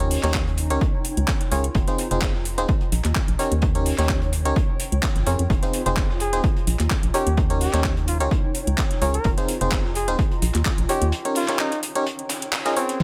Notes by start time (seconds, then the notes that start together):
Already playing: D#2
0.00 C#4 D#4 G4 A#4 C#5, closed hi-hat
0.11 open hi-hat
0.23 D#2 C#4 D#4 G4 A#4 C#5, snare, clap, closed hi-hat
0.34 kick, snare, clap
0.47 closed hi-hat
0.57 closed hi-hat, open hi-hat
0.70 C#2 C#4 D#4 G4 A#4 C#5, closed hi-hat
0.81 F4, kick, closed hi-hat
1.04 closed hi-hat, open hi-hat
1.17 C#2, closed hi-hat
1.27 kick, snare, clap, closed hi-hat
1.41 snare, closed hi-hat
1.52 C#2 C#4 F4 G#4 A#4 C#5, closed hi-hat, open hi-hat
1.64 closed hi-hat
1.75 F1, kick, closed hi-hat
1.88 C4 D#4 F4 G#4 C5, closed hi-hat
1.98 closed hi-hat, open hi-hat
2.11 F1 C4 D#4 F4 G#4 C5, closed hi-hat
2.21 kick, snare, clap, closed hi-hat
2.34 snare
2.45 closed hi-hat, open hi-hat
2.58 D#1 C4 D#4 F4 G#4 C5, closed hi-hat
2.68 kick, closed hi-hat
2.81 closed hi-hat
2.92 A#1, closed hi-hat, open hi-hat
3.04 D#2, clap, closed hi-hat
3.15 kick, snare, clap, closed hi-hat
3.28 A#1, closed hi-hat
3.39 C#4 D#4 G4 A#4 C#5, closed hi-hat, open hi-hat
3.52 D#2 C#5, closed hi-hat
3.62 kick, closed hi-hat
3.75 C#4 D#4 G4 A#4 C#5, closed hi-hat
3.85 open hi-hat
3.98 D#2 C#4 D#4 G4 A#4 C#5, snare, clap, closed hi-hat
4.09 kick, snare, clap
4.22 closed hi-hat
4.32 closed hi-hat, open hi-hat
4.45 C#2 C#4 D#4 G4 A#4 C#5, closed hi-hat
4.56 F4, kick, closed hi-hat
4.80 closed hi-hat, open hi-hat
4.92 C#2, closed hi-hat
5.03 kick, snare, clap, closed hi-hat
5.16 G#1, snare, closed hi-hat
5.26 F2 C#4 F4 G#4 A#4 C#5, closed hi-hat, open hi-hat
5.39 F2, closed hi-hat
5.50 F1, kick, closed hi-hat
5.63 C4 D#4 F4 G#4 C5, closed hi-hat
5.73 closed hi-hat, open hi-hat
5.86 F1 C4 D#4 F4 G#4 C5, closed hi-hat
5.96 kick, snare, clap, closed hi-hat
6.09 snare
6.20 G#4, closed hi-hat, open hi-hat
6.33 D#1 C4 D#4 F4 G#4 C5, closed hi-hat
6.44 kick, closed hi-hat
6.56 closed hi-hat
6.67 A#1, closed hi-hat, open hi-hat
6.79 D#2, clap, closed hi-hat
6.90 kick, snare, clap, closed hi-hat
7.03 A#1, closed hi-hat
7.14 C#4 D#4 G4 A#4 C#5, closed hi-hat, open hi-hat
7.27 D#2, closed hi-hat
7.34 C#5, kick, closed hi-hat
7.50 C#4 D#4 G4 A#4 C#5, closed hi-hat
7.61 G4, open hi-hat
7.73 D#2 C#4 D#4 G4 A#4 C#5, snare, clap, closed hi-hat
7.84 kick, snare, clap, closed hi-hat
7.97 closed hi-hat
8.08 F4, closed hi-hat, open hi-hat
8.20 C#2 C#4 D#4 F4 G4 A#4 C#5, closed hi-hat
8.31 F4, kick, closed hi-hat
8.54 closed hi-hat, open hi-hat
8.67 C#2, closed hi-hat
8.78 kick, snare, clap, closed hi-hat
8.91 snare, closed hi-hat
9.02 C#2 C#4 F4 G#4 A#4 C#5, closed hi-hat, open hi-hat
9.14 A#4, closed hi-hat
9.24 F1, kick, closed hi-hat
9.38 C4 D#4 F4 G#4 C5, closed hi-hat
9.48 closed hi-hat, open hi-hat
9.61 F1 C4 D#4 F4 G#4 C5, closed hi-hat
9.71 kick, snare, clap, closed hi-hat
9.85 snare
9.95 G#4, closed hi-hat, open hi-hat
10.08 D#1 C4 D#4 F4 G#4 C5, closed hi-hat
10.19 kick, closed hi-hat
10.31 closed hi-hat
10.42 A#1, closed hi-hat, open hi-hat
10.54 D#2, clap, closed hi-hat
10.65 kick, snare, clap, closed hi-hat
10.78 A#1, closed hi-hat
10.89 C#4 D#4 G4 A#4 C#5, closed hi-hat, open hi-hat
11.02 D#2, closed hi-hat
11.12 closed hi-hat
11.25 C#4 D#4 G4 A#4 C#5, closed hi-hat
11.35 F4, open hi-hat
11.48 C#4 D#4 G4 A#4 C#5, snare, clap, closed hi-hat
11.59 D#4, snare, clap, closed hi-hat
11.72 closed hi-hat
11.83 closed hi-hat, open hi-hat
11.95 C#4 D#4 G4 A#4 C#5, closed hi-hat
12.06 F4, closed hi-hat
12.19 closed hi-hat
12.29 snare, closed hi-hat, open hi-hat
12.42 closed hi-hat
12.53 clap, closed hi-hat
12.65 C#4 F4 G#4 A#4 D#5, snare, closed hi-hat
12.77 C4 C#4 F4 G#4 A#4 C#5, closed hi-hat, open hi-hat
12.89 closed hi-hat
13.00 impact